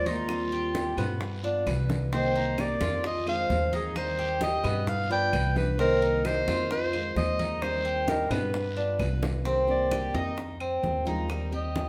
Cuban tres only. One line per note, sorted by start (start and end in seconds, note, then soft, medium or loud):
0.06 0.51 D#4 medium
0.52 0.97 G4 medium
0.98 1.42 B3 medium
1.44 1.66 D4 medium
1.67 2.11 B4 medium
2.13 2.35 C4 medium
2.36 2.80 D#4 medium
2.81 3.26 F4 medium
3.27 3.72 C5 medium
3.73 4.17 D#4 medium
4.19 4.63 G4 medium
4.64 5.09 B3 medium
5.11 5.33 D4 medium
5.33 5.78 B4 medium
5.79 6.01 C4 medium
6.02 6.46 D#4 medium
6.48 6.92 F4 medium
6.93 7.38 C5 medium
7.39 7.84 D#4 medium
7.85 8.29 G4 medium
8.31 8.75 B3 medium
8.77 8.99 D4 medium
8.99 9.44 B4 medium
9.46 9.90 C4 medium
9.92 10.14 G4 medium
10.15 10.59 D#4 medium
10.60 11.05 C4 medium
11.07 11.51 D#4 medium
11.53 11.89 G4 medium